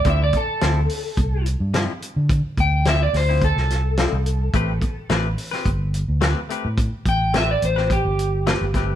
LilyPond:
<<
  \new Staff \with { instrumentName = "Electric slide guitar" } { \time 4/4 \key a \minor \tempo 4 = 107 e''16 d''16 a'2 r4. | r8 g''8 e''16 d''16 c''8 a'2~ | a'4 r2. | r8 g''8 e''16 d''16 c''8 g'2 | }
  \new Staff \with { instrumentName = "Clean electric guitar" } { \time 4/4 \key a \minor <d f c' e'>16 r8. <d f c' e'>16 r4. r16 <d f c' e'>16 r8. | r4 <d f c' e'>16 r8 <f c' e'>16 r4 <d f c' e'>16 r8. | <a c' g' b'>16 r8. <a c' g' b'>16 r8 <c' g' b'>16 r4 <a c' g' b'>16 r16 <a c' g' b'>16 r16 | r4 <a c' g' b'>16 r8 <c' g' b'>16 r4 <a c' g' b'>16 r16 <a c' g' b'>16 r16 | }
  \new Staff \with { instrumentName = "Fingered electric bass" } { \clef bass \time 4/4 \key a \minor d,8 r8 d,8 r8 c,8. g,8 r8 d16~ | d16 r16 d,4 d,8. c,4 c,8. | a,,8 r8 a,,8 r8 g,,8. d,8 r8 a,16~ | a,16 r16 a,,4 a,,8. g,,4 g,,8. | }
  \new DrumStaff \with { instrumentName = "Drums" } \drummode { \time 4/4 <hh bd>8 <hh bd>8 <hh sn>8 hho8 <hh bd>8 hh8 <hh sn>8 hh8 | <hh bd>8 <hh bd>8 <hh sn>8 <hho sn>8 <hh bd>16 sn16 <hh sn>8 <hh sn>8 hh8 | <hh bd>8 <hh bd>8 <hh sn>8 hho16 sn16 <hh bd>8 hh8 <hh sn>8 hh8 | <hh bd>8 <hh bd>8 <hh sn>8 hh16 sn16 <hh bd>8 hh8 <hh sn>8 <hh bd sn>8 | }
>>